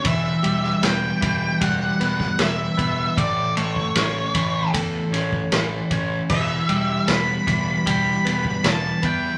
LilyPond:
<<
  \new Staff \with { instrumentName = "Lead electric guitar" } { \time 4/4 \key e \dorian \tempo 4 = 77 e''4 g''4 fis''4 e''4 | d''8 cis''4. r2 | e''4 b''4 b''4 a''8 g''8 | }
  \new Staff \with { instrumentName = "Clean electric guitar" } { \clef bass \time 4/4 \key e \dorian e8 g8 b8 e8 g8 b8 e8 b8 | a,8 a8 cis'8 e8 a8 cis'8 e8 cis'8 | e8 g8 b8 e8 g8 b8 e8 b8 | }
  \new Staff \with { instrumentName = "Picked electric bass" } { \clef bass \time 4/4 \key e \dorian e,,8 e,,8 e,,8 e,,8 e,,8 e,,8 e,,8 e,,8 | a,,8 a,,8 a,,8 a,,8 e,8 a,,8 a,,8 a,,8 | e,,8 e,,8 e,,8 e,,8 e,,8 e,,8 e,,8 e,8 | }
  \new DrumStaff \with { instrumentName = "Drums" } \drummode { \time 4/4 <bd cymr>8 cymr16 sn16 <cymr sn>8 <bd cymr>8 <bd cymr>8 <cymr sn>16 <bd sn>16 <cymr sn>8 <bd cymr>8 | <bd cymr>8 cymr16 bd16 <cymr sn>8 <bd cymr>8 <bd cymr>8 <cymr sn>16 bd16 <cymr sn>8 <bd cymr>8 | <cymc bd>8 cymr8 <cymr sn>8 <bd cymr>8 <bd cymr>8 <cymr sn>16 bd16 <cymr sn>8 <bd cymr>8 | }
>>